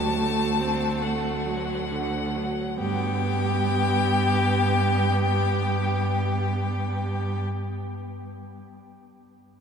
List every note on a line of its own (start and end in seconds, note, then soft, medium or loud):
0.00 2.45 D2 medium
0.00 0.21 F#3 medium
0.00 2.49 F#4 medium
0.00 1.04 A5 loud
0.19 0.62 A3 medium
0.60 1.03 C4 medium
1.02 1.47 A3 medium
1.02 2.78 F#5 medium
1.46 1.93 F#3 medium
1.92 2.38 D3 medium
2.36 2.78 F#3 medium
2.78 7.42 G2 medium
2.78 7.42 B3 medium
2.78 7.43 G4 loud
2.78 7.42 G5 loud